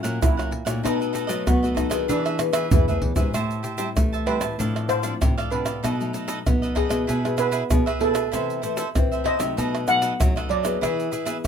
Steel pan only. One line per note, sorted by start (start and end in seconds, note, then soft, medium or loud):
0.00 0.24 F#4 medium
0.22 0.87 E4 medium
0.85 1.49 D#4 medium
1.47 1.79 F#4 medium
1.77 2.10 D#4 medium
2.10 2.74 D4 medium
2.72 3.30 E4 medium
4.27 4.86 B4 medium
4.89 5.48 C5 loud
5.52 6.42 B4 medium
6.77 7.35 G#4 medium
7.39 7.98 B4 loud
8.01 8.91 A4 medium
9.26 9.85 D#5 medium
9.88 10.47 F#5 loud
10.50 11.40 D5 medium